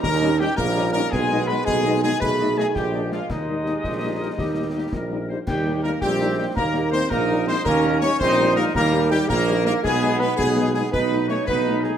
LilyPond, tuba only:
\new Staff \with { instrumentName = "Tuba" } { \clef bass \time 6/8 \key ees \major \tempo 4. = 110 ees,4. bes,,4. | ces,4. ces,4. | b,,4. bes,,4. | ees,4. bes,,4. |
ees,4. bes,,4. | ees,4. bes,,4. | ees,4. bes,,4. | ees,4. bes,,4. |
ees,4. bes,,4. | ces,4. ces,4. | b,,4. b,,4. | }